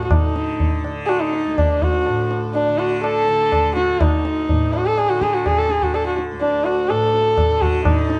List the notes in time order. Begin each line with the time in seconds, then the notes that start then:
Already playing: D2 A2 D3
0.05 F#4
0.11 D#4, tabla na, tabla ge
0.24 D3
0.36 tabla te
0.60 tabla tin, tabla ge
0.84 D3, tabla na
1.06 F#4 G#4, tabla na
1.21 D#4
1.33 tabla te
1.46 D2
1.58 D4, tabla na, tabla ge
1.82 F#4, tabla ge
2.06 A2, tabla na
2.31 tabla te
2.54 D4, tabla tin
2.68 D3
2.79 F#4, tabla na
3.03 A4, tabla na
3.28 D3, tabla te
3.52 tabla na, tabla ge
3.76 F#4, tabla te
3.89 D2
4.00 D#4, tabla na, tabla ge
4.25 tabla te
4.48 A2, tabla tin, tabla ge
4.73 F#4, tabla na
4.86 A4
4.97 G#4, tabla na
5.09 D3 F#4
5.21 G#4, tabla ke
5.34 F#4, tabla te
5.46 G#4, tabla na, tabla ge
5.59 A4
5.70 D3 G#4, tabla te
5.82 F#4, tabla ge
5.94 A4, tabla na
6.07 F#4
6.18 tabla te
6.31 D2
6.41 D4, tabla tin
6.65 F#4, tabla na
6.89 A2 A4, tabla na
7.14 tabla te
7.37 tabla na, tabla ge
7.49 D3
7.62 F#4, tabla ge
7.85 A2 D#4, tabla na, tabla ge
8.10 tabla te